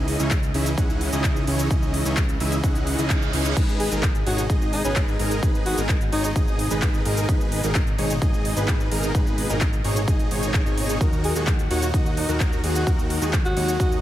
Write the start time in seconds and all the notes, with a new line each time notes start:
Already playing: C#2 C#3 E3 C#4 D#4 E4 G#4 D#5
0.08 open hi-hat, ride
0.19 C#2 C#4 D#4 E4 G#4 C#5, closed hi-hat, shaker
0.31 kick, clap, closed hi-hat, shaker
0.43 closed hi-hat, shaker
0.54 C#2 C#4 D#4 E4 G#4 E5, open hi-hat, ride
0.66 closed hi-hat, shaker
0.78 C#2 C#4 D#4 E4 G#4 F#5, kick, closed hi-hat, shaker
0.90 shaker
1.01 open hi-hat, ride
1.12 C#2 C#4 D#4 E4 G#4 D#5, closed hi-hat, shaker
1.24 kick, clap, closed hi-hat, shaker
1.36 shaker
1.47 C#2 C#4 D#4 E4 G#4 C#5, open hi-hat, ride
1.59 closed hi-hat, shaker
1.71 C#2 C#4 D#4 E4 G#4 D#5, kick, closed hi-hat, shaker
1.83 shaker
1.94 open hi-hat, ride
2.05 C#2 C#4 D#4 E4 G#4 C#5, closed hi-hat, shaker
2.17 kick, clap, closed hi-hat, shaker
2.29 closed hi-hat, shaker
2.40 C#2 C#4 D#4 E4 G#4 E5, open hi-hat, ride
2.52 closed hi-hat, shaker
2.64 C#2 C#4 D#4 E4 G#4 F#5, kick, closed hi-hat, reverse cymbal, shaker
2.75 closed hi-hat, shaker
2.87 open hi-hat, ride
2.98 C#2 C#4 D#4 E4 G#4 D#5, closed hi-hat, shaker
3.10 kick, clap, closed hi-hat, shaker
3.22 shaker
3.33 C#2 C#4 D#4 E4 G#4 C#5, open hi-hat, ride
3.45 closed hi-hat, shaker
3.56 G#1 B2 G#3 D#4 G#4 B4, kick, closed hi-hat, crash, shaker
3.69 shaker
3.80 G#4, open hi-hat, ride
3.91 G#1 D#4 G#4 A#4, closed hi-hat, shaker
4.03 kick, clap, closed hi-hat, shaker
4.15 closed hi-hat, shaker
4.26 G#1 D#4 F#4 G#4 C#5, open hi-hat, ride
4.38 F#4, closed hi-hat, shaker
4.50 G#1 D#4 G#4 D#5, kick, closed hi-hat, shaker
4.62 shaker
4.73 D#4, open hi-hat, ride
4.84 G#1 C#4 D#4 G#4 B4, closed hi-hat, shaker
4.96 kick, clap, closed hi-hat, shaker
5.08 shaker
5.19 G#1 D#4 G#4 A#4, open hi-hat, ride
5.31 closed hi-hat, shaker
5.43 G#1 D#4 G#4, kick, closed hi-hat, shaker
5.55 shaker
5.66 F#4, open hi-hat, ride
5.78 G#1 D#4 G#4 A#4, closed hi-hat, shaker
5.89 kick, clap, closed hi-hat, shaker
6.01 closed hi-hat, shaker
6.12 G#1 D#4 G#4 C#5, open hi-hat, ride
6.24 D#4, closed hi-hat, shaker
6.36 G#1 D#4 G#4 D#5, kick, closed hi-hat, shaker
6.48 shaker
6.59 open hi-hat, ride
6.71 G#1 D#4 G#4 B4, closed hi-hat, shaker
6.82 kick, clap, closed hi-hat, shaker
6.94 shaker
7.05 G#1 D#4 G#4 A#4, open hi-hat, ride
7.17 closed hi-hat, shaker
7.29 G#1 A#2 D#4 G#4 B4, kick, closed hi-hat, shaker
7.41 shaker
7.52 open hi-hat, ride
7.64 G#1 D#4 G#4 A#4, closed hi-hat, shaker
7.75 kick, clap, closed hi-hat, shaker
7.87 closed hi-hat, shaker
7.98 G#1 D#4 G#4 C#5, open hi-hat, ride
8.10 closed hi-hat, shaker
8.22 G#1 D#4 G#4 D#5, kick, closed hi-hat, shaker
8.34 shaker
8.45 open hi-hat, ride
8.57 G#1 D#4 G#4 B4, closed hi-hat, shaker
8.68 kick, clap, closed hi-hat, shaker
8.80 shaker
8.91 G#1 D#4 G#4 A#4, open hi-hat, ride
9.03 closed hi-hat, shaker
9.15 G#1 D#4 B4, kick, closed hi-hat, shaker
9.27 shaker
9.38 open hi-hat, ride
9.50 G#1 D#4 G#4 A#4, closed hi-hat, shaker
9.61 kick, clap, closed hi-hat, shaker
9.73 closed hi-hat, shaker
9.84 G#1 D#4 G#4 C#5, open hi-hat, ride
9.96 closed hi-hat, shaker
10.08 G#1 D#4 G#4 D#5, kick, closed hi-hat, shaker
10.19 closed hi-hat, shaker
10.31 G#1 D#4 G#4 C#5, open hi-hat, ride
10.43 closed hi-hat, shaker
10.54 kick, clap, closed hi-hat, shaker
10.66 G#1 D#4 G#4 C#5, shaker
10.78 open hi-hat, ride
10.89 closed hi-hat, shaker
11.01 D#2 D#3 D#4 F#4 A#4, kick, closed hi-hat, shaker
11.13 shaker
11.24 G#4, open hi-hat, ride
11.36 D#2 D#4 F#4 G#4, closed hi-hat, shaker
11.47 kick, clap, closed hi-hat, shaker
11.59 closed hi-hat, shaker
11.71 D#2 D#4 F#4 C#5, open hi-hat, ride
11.82 F#4, closed hi-hat, shaker
11.94 D#2 D#4 F#4 D#5, kick, closed hi-hat, shaker
12.06 shaker
12.17 D#4, open hi-hat, ride
12.29 D#2 D#4 F#4 A#4, closed hi-hat, shaker
12.40 kick, clap, closed hi-hat, shaker
12.53 shaker
12.64 D#2 D#4 F#4 G#4, open hi-hat, ride
12.75 F#4, closed hi-hat, shaker
12.87 D#2 G#3 A#4, kick, closed hi-hat, shaker
12.99 shaker
13.10 open hi-hat, ride
13.22 D#2 D#4 F#4 G#4, closed hi-hat, shaker
13.33 kick, clap, closed hi-hat, shaker
13.45 F#4, closed hi-hat, shaker
13.57 D#2 D#4 F#4 C#5, open hi-hat, ride
13.68 closed hi-hat, shaker
13.80 D#2 D#4 F#4 D#5, kick, closed hi-hat, shaker
13.92 shaker